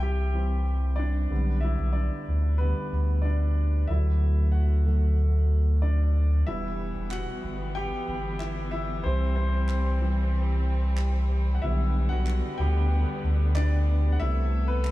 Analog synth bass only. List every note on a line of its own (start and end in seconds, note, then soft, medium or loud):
0.00 1.27 C2 medium
1.30 1.76 B1 loud
1.79 2.09 B1 loud
2.28 2.73 D2 medium
2.92 3.85 D2 medium
3.89 6.43 D2 loud
6.48 6.92 E1 medium
6.96 7.26 E1 loud
7.44 7.89 G1 medium
8.08 9.01 G1 loud
9.05 11.59 C2 loud
11.63 12.08 B1 loud
12.11 12.41 B1 medium
12.59 13.05 D2 medium
13.24 14.17 D2 medium
14.21 14.91 C2 medium